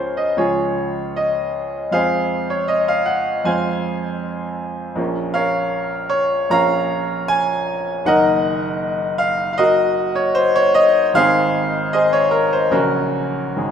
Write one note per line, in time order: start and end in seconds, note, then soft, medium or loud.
0.00 0.33 C#2 soft
0.00 0.33 F3 soft
0.00 0.34 G#3 soft
0.00 0.38 C#4 soft
0.00 0.39 F4 medium
0.00 0.38 G#4 medium
0.00 0.41 A#4 medium
0.00 0.17 C5 medium
0.00 0.38 C#5 medium
0.17 0.38 D#5 medium
0.37 1.88 C#2 soft
0.37 1.88 F3 soft
0.37 1.88 G#3 soft
0.37 1.88 C#4 soft
0.37 1.14 F4 medium
0.37 1.14 G#4 medium
0.37 1.18 C#5 medium
1.16 1.92 D#5 medium
1.91 3.43 F2 soft
1.91 3.44 F3 soft
1.91 3.43 G#3 soft
1.91 3.44 C4 soft
1.91 2.47 G#4 medium
1.91 2.47 C5 medium
1.91 2.50 F5 medium
2.50 2.70 C#5 medium
2.68 2.88 D#5 medium
2.88 3.08 F5 medium
3.06 3.46 F#5 medium
3.44 4.93 F2 soft
3.44 4.93 F3 soft
3.44 4.94 G#3 soft
3.44 4.93 C4 soft
3.44 4.57 C5 medium
3.44 4.58 F5 medium
3.44 4.61 G#5 medium
4.96 6.48 A#1 medium
4.96 6.49 F3 soft
4.96 6.49 A#3 soft
4.96 6.49 C#4 soft
5.34 6.07 A#4 medium
5.34 6.08 C#5 medium
5.34 6.11 F5 medium
6.10 6.50 C#5 medium
6.50 8.01 A#1 medium
6.50 8.02 F3 soft
6.50 8.02 A#3 soft
6.50 8.02 C#4 soft
6.50 7.26 C#5 medium
6.50 7.27 F5 medium
6.50 7.30 A#5 loud
7.28 8.06 G#5 loud
8.05 11.11 F#1 medium
8.05 11.11 D#3 soft
8.05 11.11 A#3 medium
8.05 11.11 D#4 soft
8.05 9.17 A#4 medium
8.05 9.16 D#5 medium
8.05 9.20 F#5 loud
9.18 9.50 F5 loud
9.53 9.59 F5 medium
9.58 10.12 F#4 medium
9.58 10.12 A#4 medium
9.58 10.16 D#5 loud
10.15 10.35 C#5 medium
10.35 10.55 C5 loud
10.56 10.76 C#5 loud
10.74 11.15 D#5 loud
11.14 12.68 G#1 medium
11.14 12.68 D#3 medium
11.14 12.68 G#3 medium
11.14 12.68 C4 soft
11.14 11.90 G#4 medium
11.14 11.90 C5 medium
11.14 11.94 F5 loud
11.93 12.12 G#4 medium
11.93 12.12 C5 medium
11.93 12.13 D#5 medium
12.13 12.32 C#5 loud
12.31 12.51 A#4 medium
12.53 12.73 C5 medium
12.71 13.54 A#1 medium
12.71 13.54 C#3 soft
12.71 13.55 F#3 soft
12.71 13.71 C#4 medium
12.71 13.71 F#4 medium
12.71 13.71 A#4 medium
13.56 13.71 G#1 medium
13.56 13.71 D#3 soft
13.56 13.71 G#3 soft